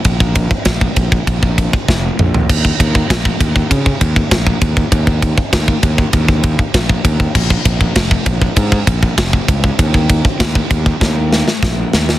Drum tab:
CC |----------------|x---------------|----------------|x---------------|
RD |x-x-x-x-x-x-----|--x-x-x-x-x-x-x-|x-x-x-x-x-x-x-x-|--x-x-x-x-x-x-x-|
SD |----o-------o---|----o-------o---|----o-------o---|----o-------o---|
T2 |--------------o-|----------------|----------------|----------------|
FT |---------------o|----------------|----------------|----------------|
BD |ooooooooooooo---|oooooooooooooooo|oooooooooooooooo|oooooooooooooooo|

CC |----------------|
RD |x-x-x-x---------|
SD |----o---o-ooo-oo|
T2 |----------------|
FT |----------------|
BD |ooooooooo---o---|